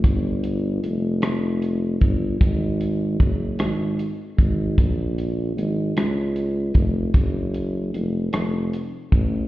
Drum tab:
HH |xxxxxx|xxxxxx|xxxxxx|xxxxxx|
SD |---r--|---r--|---r--|---r--|
BD |o----o|o-o--o|o----o|o----o|